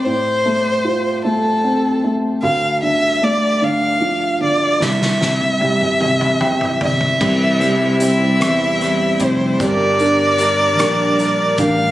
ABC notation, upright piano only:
X:1
M:6/8
L:1/8
Q:3/8=50
K:Cmix
V:1 name="Upright piano" clef=bass
A,, A, F A, C A, | D,, D, A, D, F, D, | C,, C, G, C, [E,g] [C,d] | C, G, C E G, C |
G, D B D B D |]